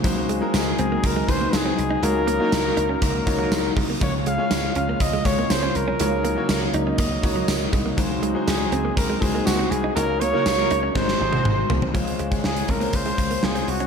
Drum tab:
HH |x-x-x-x-x-x-x-x-|x-x-x-x-x-x-x-o-|x-x-x-x-x-x-x-x-|x-x-x-x-x-x-x-x-|
TB |----x-------x---|----x-------x---|----x-------x---|----x-------x---|
SD |----o-------o---|----o-------o---|----o-------o---|----o-------o---|
T1 |----------------|----------------|----------------|----------------|
T2 |----------------|----------------|----------------|----------------|
FT |----------------|----------------|----------------|----------------|
BD |o-------o-o-----|--------o-o---o-|o-------o-o-----|--------o-o---o-|

HH |x-x-x-x-x-x-x-x-|x-x-x-x---------|xxxx-xxxxxxx-xox|
TB |----x-------x---|----x-----------|----------------|
SD |----o-------o---|----o---oo------|----o-------o---|
T1 |----------------|-----------o----|----------------|
T2 |----------------|------------o---|----------------|
FT |----------------|--------------oo|----------------|
BD |o-------o-o-----|--------o-------|o--o--o-o-o-----|